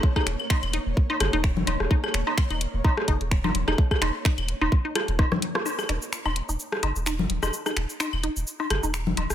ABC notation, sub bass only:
X:1
M:4/4
L:1/16
Q:"Swing 16ths" 1/4=128
K:Ebm
V:1 name="Sub bass" clef=bass
z2 E,,, z2 E,,, z E,,, z2 G,,, E,,,2 G,,, E,,, E,,, | z2 E,,, z2 E,,, z E,,, z2 G,,, E,,,2 G,,, E,,, E,,, | z2 E,,, z2 E,,, z E,,, z3 E,,, z4 | z2 E,,, z2 E,,, z E,,, z2 G,,, E,,,2 G,,, E,,, E,,, |
z2 E,,, z2 E,,, z E,,, z2 G,,, E,,,2 G,,, E,,, E,,, |]